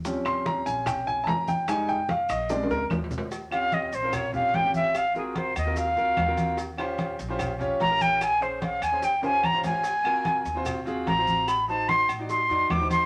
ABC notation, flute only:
X:1
M:4/4
L:1/8
Q:1/4=147
K:Ebmix
V:1 name="Flute"
z8 | z8 | z f e c d f g _f | f A c e f4 |
z6 b g | a c f a g a b a- | a4 z2 b2 | _c' =a =c' z c'2 =d' c' |]